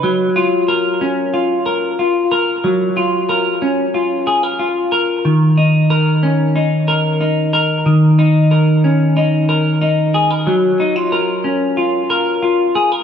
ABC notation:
X:1
M:4/4
L:1/16
Q:1/4=92
K:Gblyd
V:1 name="Clean electric guitar"
G,2 F2 B2 D2 F2 B2 F2 B2 | G,2 F2 B2 D2 F2 A B F2 B2 | E,2 E2 B2 D2 E2 B2 E2 B2 | E,2 E2 B2 D2 E2 B2 E2 A B |
G,2 E F B2 D2 F2 B2 F2 A B |]